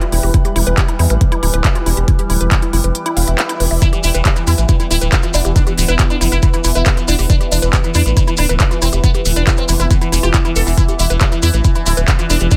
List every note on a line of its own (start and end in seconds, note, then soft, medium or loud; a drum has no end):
0.00 3.81 E3 medium
0.00 3.84 G3 medium
0.00 12.57 E4 medium
0.00 0.05 F4 medium
0.00 12.57 B4 medium
0.00 1.71 B5 medium
0.00 closed hi-hat medium
0.12 0.20 E1 medium
0.12 0.18 E4 loud
0.12 open hi-hat loud
0.23 0.31 E1 medium
0.23 0.26 G4 medium
0.23 open hi-hat medium
0.34 0.40 E4 medium
0.34 kick loud
0.34 closed hi-hat medium
0.45 0.50 G4 medium
0.45 closed hi-hat medium
0.56 0.63 E1 medium
0.56 0.59 E4 loud
0.56 open hi-hat loud
0.67 0.74 E1 medium
0.67 0.70 B4 loud
0.67 closed hi-hat medium
0.78 0.86 G4 medium
0.78 kick loud
0.78 clap loud
0.78 closed hi-hat medium
0.88 0.94 E4 medium
0.88 closed hi-hat medium
0.99 1.07 E2 medium
0.99 1.05 E4 loud
0.99 open hi-hat loud
1.10 1.18 A1 medium
1.10 1.16 B4 medium
1.10 closed hi-hat medium
1.21 kick loud
1.21 closed hi-hat medium
1.32 1.37 E4 loud
1.32 closed hi-hat medium
1.43 1.50 D1 loud
1.43 1.46 E4 loud
1.43 open hi-hat loud
1.54 1.61 D1 medium
1.54 1.57 B4 loud
1.54 closed hi-hat medium
1.65 1.73 G4 medium
1.65 kick loud
1.65 clap loud
1.65 closed hi-hat medium
1.69 5.19 G5 medium
1.75 1.79 F4 medium
1.75 closed hi-hat medium
1.86 1.94 E1 medium
1.86 1.92 E4 loud
1.86 open hi-hat loud
1.97 2.05 E1 medium
1.97 2.00 G4 medium
1.97 closed hi-hat medium
2.08 2.13 E4 medium
2.08 kick loud
2.08 closed hi-hat medium
2.19 2.24 G4 medium
2.19 closed hi-hat medium
2.30 2.37 D1 medium
2.30 2.33 E4 loud
2.30 open hi-hat loud
2.41 2.48 E1 medium
2.41 2.44 B4 loud
2.41 closed hi-hat medium
2.51 2.60 G4 medium
2.51 kick loud
2.51 clap loud
2.51 closed hi-hat medium
2.62 2.68 E4 medium
2.62 closed hi-hat medium
2.73 2.81 F1 loud
2.73 2.79 E4 loud
2.73 open hi-hat loud
2.84 2.91 F1 medium
2.84 2.90 B4 medium
2.84 closed hi-hat medium
2.95 closed hi-hat medium
2.95 swell medium
3.06 3.11 E4 loud
3.06 closed hi-hat medium
3.17 3.24 E1 loud
3.17 3.22 F5 loud
3.17 open hi-hat loud
3.28 3.35 E1 medium
3.28 3.36 E5 medium
3.28 closed hi-hat medium
3.38 3.44 E5 medium
3.38 clap loud
3.38 closed hi-hat medium
3.49 3.57 E4 loud
3.49 closed hi-hat medium
3.60 3.68 E1 medium
3.60 3.66 B4 medium
3.60 open hi-hat loud
3.71 3.78 E1 medium
3.71 3.76 E5 medium
3.71 open hi-hat medium
3.82 12.57 E3 medium
3.82 10.80 B3 medium
3.82 3.87 E4 medium
3.82 3.87 E4 loud
3.82 kick loud
3.82 closed hi-hat medium
3.82 maracas medium
3.93 3.98 E3 medium
3.93 3.98 G4 medium
3.93 closed hi-hat medium
3.93 maracas soft
4.03 4.11 E1 medium
4.03 4.09 E4 medium
4.03 open hi-hat loud
4.03 maracas medium
4.14 4.22 E1 medium
4.14 4.19 E3 medium
4.14 4.18 B4 loud
4.14 closed hi-hat medium
4.14 maracas soft
4.25 4.30 E3 medium
4.25 4.34 G4 medium
4.25 kick loud
4.25 clap loud
4.25 closed hi-hat medium
4.25 maracas medium
4.36 4.41 E3 medium
4.36 4.42 E4 medium
4.36 closed hi-hat medium
4.36 maracas soft
4.47 4.55 E2 loud
4.47 4.53 E4 loud
4.47 4.52 E4 medium
4.47 open hi-hat loud
4.47 maracas medium
4.58 4.65 A1 medium
4.58 4.63 E3 medium
4.58 4.63 B4 medium
4.58 closed hi-hat medium
4.58 maracas soft
4.69 4.74 E3 medium
4.69 4.72 E4 loud
4.69 kick loud
4.69 closed hi-hat medium
4.69 maracas soft
4.80 4.85 E3 medium
4.80 4.85 E4 loud
4.80 closed hi-hat medium
4.80 maracas soft
4.91 4.98 D1 loud
4.91 4.96 E4 medium
4.91 4.94 E4 loud
4.91 open hi-hat loud
4.91 maracas medium
5.01 5.09 D1 medium
5.01 5.06 E3 medium
5.01 5.05 B4 loud
5.01 closed hi-hat medium
5.01 maracas soft
5.12 5.17 E3 medium
5.12 5.20 G4 medium
5.12 kick loud
5.12 clap loud
5.12 closed hi-hat medium
5.12 maracas medium
5.17 8.67 B5 medium
5.23 5.28 E3 medium
5.23 5.26 F4 medium
5.23 closed hi-hat medium
5.23 maracas soft
5.34 5.41 E1 medium
5.34 5.39 D4 medium
5.34 5.39 E4 loud
5.34 open hi-hat loud
5.34 maracas medium
5.45 5.52 E1 medium
5.45 5.50 E3 medium
5.45 5.48 G4 medium
5.45 closed hi-hat medium
5.45 maracas soft
5.56 5.61 D4 medium
5.56 5.61 E4 medium
5.56 kick loud
5.56 closed hi-hat medium
5.56 maracas medium
5.67 5.72 E3 medium
5.67 5.72 G4 medium
5.67 closed hi-hat medium
5.67 maracas soft
5.78 5.85 D1 medium
5.78 5.83 E3 medium
5.78 open hi-hat loud
5.78 maracas loud
5.88 5.96 E1 medium
5.88 5.93 E4 medium
5.88 5.92 B4 loud
5.88 closed hi-hat medium
5.88 maracas soft
5.99 6.04 E3 medium
5.99 6.07 G4 medium
5.99 kick loud
5.99 clap loud
5.99 closed hi-hat medium
5.99 maracas medium
6.10 6.15 D4 medium
6.10 6.16 E4 medium
6.10 closed hi-hat medium
6.10 maracas soft
6.21 6.28 F1 medium
6.21 6.26 E3 medium
6.21 6.26 E4 loud
6.21 open hi-hat loud
6.21 maracas medium
6.32 6.39 F1 medium
6.32 6.37 E4 medium
6.32 6.37 B4 medium
6.32 closed hi-hat medium
6.32 maracas soft
6.43 6.48 E3 medium
6.43 6.46 E4 loud
6.43 kick loud
6.43 closed hi-hat medium
6.43 maracas medium
6.53 6.59 E3 medium
6.53 6.59 E4 loud
6.53 closed hi-hat medium
6.53 maracas soft
6.64 6.72 E1 loud
6.64 6.70 E3 medium
6.64 6.68 E4 loud
6.64 open hi-hat loud
6.64 maracas medium
6.75 6.83 E1 medium
6.75 6.80 E4 medium
6.75 6.79 B4 loud
6.75 closed hi-hat medium
6.75 maracas soft
6.86 6.91 E3 medium
6.86 6.94 G4 medium
6.86 kick loud
6.86 clap loud
6.86 closed hi-hat medium
6.86 maracas medium
6.97 7.02 E3 medium
6.97 7.00 F4 medium
6.97 closed hi-hat medium
6.97 maracas soft
7.08 7.15 E1 medium
7.08 7.13 D4 medium
7.08 7.13 E4 loud
7.08 open hi-hat loud
7.08 maracas loud
7.19 7.26 E1 medium
7.19 7.24 E3 medium
7.19 7.22 G4 medium
7.19 open hi-hat medium
7.19 maracas soft
7.30 7.35 D4 loud
7.30 7.35 E4 medium
7.30 kick loud
7.30 closed hi-hat medium
7.30 maracas medium
7.41 7.46 E3 medium
7.41 7.46 G4 medium
7.41 closed hi-hat medium
7.41 maracas soft
7.51 7.59 E1 medium
7.51 7.56 D4 medium
7.51 open hi-hat loud
7.51 maracas loud
7.62 7.70 E1 medium
7.62 7.67 E3 medium
7.62 7.66 B4 loud
7.62 closed hi-hat medium
7.62 maracas soft
7.73 7.78 E3 medium
7.73 7.81 G4 medium
7.73 kick loud
7.73 clap loud
7.73 closed hi-hat medium
7.73 maracas medium
7.84 7.89 E3 medium
7.84 7.90 E4 medium
7.84 closed hi-hat medium
7.84 maracas soft
7.94 8.02 E2 medium
7.94 8.00 D4 loud
7.94 8.00 E4 loud
7.94 open hi-hat loud
7.94 maracas medium
8.06 8.13 A1 medium
8.06 8.11 E3 medium
8.06 8.11 B4 medium
8.06 closed hi-hat soft
8.06 maracas soft
8.17 8.22 E3 medium
8.17 8.20 E4 loud
8.17 kick loud
8.17 closed hi-hat medium
8.17 maracas medium
8.27 8.33 E3 medium
8.27 8.33 E4 loud
8.27 closed hi-hat medium
8.27 maracas soft
8.37 8.46 D1 loud
8.37 8.43 D4 medium
8.37 8.42 E4 loud
8.37 open hi-hat loud
8.37 maracas loud
8.49 8.57 D1 medium
8.49 8.54 E3 medium
8.49 8.53 B4 loud
8.49 closed hi-hat medium
8.49 maracas soft
8.60 8.65 E3 medium
8.60 8.68 G4 medium
8.60 kick loud
8.60 clap loud
8.60 closed hi-hat medium
8.60 maracas soft
8.65 12.15 E5 medium
8.71 8.76 E3 medium
8.71 8.74 F4 medium
8.71 closed hi-hat medium
8.71 maracas soft
8.82 8.89 E1 medium
8.82 8.87 C4 medium
8.82 8.87 E4 loud
8.82 open hi-hat loud
8.82 maracas loud
8.92 9.00 E1 medium
8.92 8.98 E3 medium
8.92 8.96 G4 medium
8.92 closed hi-hat soft
8.92 maracas soft
9.04 9.09 B3 medium
9.04 9.09 E4 medium
9.04 kick loud
9.04 closed hi-hat medium
9.04 maracas medium
9.14 9.19 E3 medium
9.14 9.20 G4 medium
9.14 closed hi-hat medium
9.14 maracas soft
9.25 9.33 D1 medium
9.25 9.30 E3 medium
9.25 open hi-hat loud
9.25 maracas medium
9.36 9.44 E1 medium
9.36 9.41 D4 medium
9.36 9.40 B4 loud
9.36 closed hi-hat medium
9.36 maracas soft
9.47 9.52 E3 medium
9.47 9.55 G4 medium
9.47 kick loud
9.47 clap loud
9.47 closed hi-hat medium
9.47 maracas medium
9.57 9.63 C4 medium
9.57 9.63 E4 medium
9.57 closed hi-hat medium
9.57 maracas soft
9.68 9.76 F1 medium
9.68 9.74 E3 medium
9.68 9.74 E4 loud
9.68 open hi-hat loud
9.68 maracas loud
9.80 9.87 F1 medium
9.80 9.85 E4 medium
9.80 9.85 B4 medium
9.80 closed hi-hat soft
9.80 maracas soft
9.91 9.96 E3 medium
9.91 9.94 E4 loud
9.91 kick loud
9.91 closed hi-hat medium
9.91 maracas medium
10.01 10.06 E3 medium
10.01 10.07 E4 loud
10.01 closed hi-hat medium
10.01 maracas soft
10.12 10.20 E1 loud
10.12 10.17 E3 medium
10.12 10.16 E4 loud
10.12 open hi-hat loud
10.12 maracas loud
10.23 10.31 E1 medium
10.23 10.29 F4 loud
10.23 10.28 G4 medium
10.23 closed hi-hat medium
10.23 maracas soft
10.34 10.39 E3 medium
10.34 10.42 E4 loud
10.34 kick loud
10.34 clap loud
10.34 closed hi-hat medium
10.34 maracas soft
10.45 10.50 E3 medium
10.45 10.50 E4 loud
10.45 closed hi-hat soft
10.45 maracas soft
10.56 10.63 E1 medium
10.56 10.61 A4 medium
10.56 10.61 B4 medium
10.56 open hi-hat loud
10.56 maracas medium
10.67 10.74 E1 medium
10.67 10.72 E3 medium
10.67 10.70 E4 medium
10.67 open hi-hat medium
10.67 maracas soft
10.78 12.57 D4 medium
10.78 10.83 E4 loud
10.78 10.83 E4 medium
10.78 kick loud
10.78 closed hi-hat medium
10.78 maracas medium
10.88 10.93 E3 medium
10.88 10.94 G4 medium
10.88 closed hi-hat soft
10.88 maracas soft
10.99 11.07 E1 medium
10.99 11.04 E4 loud
10.99 open hi-hat loud
10.99 maracas medium
11.10 11.18 E1 medium
11.10 11.15 E3 medium
11.10 11.13 B4 loud
11.10 closed hi-hat medium
11.10 maracas soft
11.21 11.26 E3 medium
11.21 11.29 G4 medium
11.21 kick loud
11.21 clap loud
11.21 closed hi-hat medium
11.21 maracas medium
11.32 11.37 E3 medium
11.32 11.37 E4 medium
11.32 closed hi-hat medium
11.32 maracas soft
11.43 11.50 E2 loud
11.43 11.48 E4 loud
11.43 open hi-hat loud
11.43 maracas medium
11.54 11.61 A1 medium
11.54 11.59 E3 medium
11.54 11.59 B4 medium
11.54 closed hi-hat medium
11.54 maracas soft
11.64 11.70 E3 medium
11.64 11.68 E4 loud
11.64 kick loud
11.64 closed hi-hat medium
11.64 maracas medium
11.75 11.80 E3 medium
11.75 11.81 E4 loud
11.75 closed hi-hat medium
11.75 maracas soft
11.86 11.94 D1 loud
11.86 11.90 E4 loud
11.86 11.91 E4 medium
11.86 open hi-hat loud
11.86 maracas medium
11.97 12.05 D1 medium
11.97 12.02 E3 medium
11.97 12.00 B4 loud
11.97 closed hi-hat medium
11.97 maracas soft
12.08 12.13 E3 medium
12.08 12.16 G4 medium
12.08 kick loud
12.08 clap loud
12.08 closed hi-hat medium
12.08 maracas soft
12.13 12.57 B5 medium
12.19 12.24 E3 medium
12.19 12.22 F4 medium
12.19 closed hi-hat soft
12.19 maracas soft
12.30 12.37 E1 medium
12.30 12.35 D4 medium
12.30 12.35 E4 loud
12.30 open hi-hat loud
12.30 maracas medium
12.40 12.48 E1 medium
12.40 12.46 E3 medium
12.40 12.44 G4 medium
12.40 closed hi-hat soft
12.40 maracas soft
12.51 12.56 D4 medium
12.51 12.57 E4 medium
12.51 kick loud
12.51 closed hi-hat medium
12.51 maracas medium